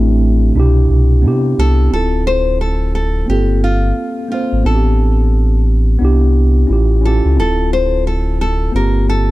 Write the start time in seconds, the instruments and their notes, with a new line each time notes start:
Already playing: sub bass A1, tine electric piano A3 C4 D4 E4 G4, nylon-string guitar C5
0.54 sub bass C2, tine electric piano B2 D4 E4
0.60 tine electric piano G4
0.90 sub bass C2
1.22 sub bass C3, tine electric piano B3 D4 E4
1.28 tine electric piano G4
1.58 sub bass C2, nylon-string guitar A4
1.90 sub bass D1, tine electric piano C4 E4 F4, nylon-string guitar A4
1.96 tine electric piano A4
2.27 nylon-string guitar C5
2.61 nylon-string guitar A4
2.95 nylon-string guitar A4
3.26 sub bass G1, tine electric piano A#3 C4 F4, nylon-string guitar G4
3.32 tine electric piano A4
3.64 nylon-string guitar F4
4.28 tine electric piano A#3 C4 F4, nylon-string guitar F4
4.34 tine electric piano C5
4.53 sub bass G#1
4.63 sub bass A1, tine electric piano B3 C4 D4, nylon-string guitar A4
4.68 tine electric piano F4
4.75 tine electric piano G4
5.99 sub bass C2, tine electric piano B3 D4 E4
6.05 tine electric piano G4
6.67 sub bass A1, tine electric piano C#4 E4 F4
6.73 tine electric piano G4
7.01 tine electric piano C#4 E4 F4
7.05 tine electric piano G4, nylon-string guitar A4
7.25 sub bass C#2
7.35 sub bass D1, tine electric piano C4 E4 F4
7.40 nylon-string guitar A4, tine electric piano A4
7.73 nylon-string guitar C5
8.07 nylon-string guitar A4
8.41 nylon-string guitar A4
8.72 sub bass G1, tine electric piano A#3 C4 F4, nylon-string guitar A#4
8.77 tine electric piano G4
9.09 nylon-string guitar A4